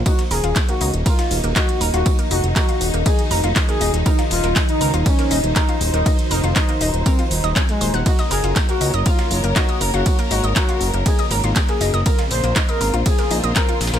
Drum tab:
RD |x-------x-------x-------x-------|x-------x-------x-------x-------|x-------x-------x-------x-------|x-------x-------x-------x-------|
HH |x-x-o-x-x-x-o-x-x-x-o-x-x-x-o-x-|x-x-o-x-x-x-o-x-x-x-o-x-x-x-o-x-|x-x-o-x-x-x-o-x-x-x-o-x-x-x-o-x-|x-x-o-x-x-x-o-x-x-x-o-x-x-x-o-x-|
TB |x---x---x---x---x---x---x---x---|x---x---x---x---x---x---x---x---|x---x---x---x---x---x---x---x---|x---x---x---x---x---x---x---x---|
CP |--------x---------------x-------|--------x---------------x-------|--------x---------------x-------|--------x---------------x-------|
SD |--o-o---o---------o-----o-----o-|--------o-------------o-o-o---o-|--o-o---o---------o-----o-----o-|--------o-------------o-o-o---o-|
BD |o-------o-------o-------o-------|o-------o-------o-------o-------|o-------o-------o-------o-------|o-------o-------o-------o-------|

RD |x-------x-------x-------x-------|x-------x-------x-------x-------|x-------x-------x-------x-------|
HH |x-x-o-x-x-x-o-x-x-x-o-x-x-x-o-x-|x-x-o-x-x-x-o-x-x-x-o-x-x-x-o-x-|x-x-o-x-x-x-o-x-x-x-o-x-x-x-o-x-|
TB |x---x---x---x---x---x---x---x---|x---x---x---x---x---x---x---x---|x---x---x---x---x---x---x---xxx-|
CP |--------x---------------x-------|--------x---------------x-------|--------x---------------x-------|
SD |--o-o---o---------o-----o-----o-|--------o-------------o-o-o---o-|--o-o---o---------o-----o---ooo-|
BD |o-------o-------o-------o-------|o-------o-------o-------o-------|o-------o-------o-------o-------|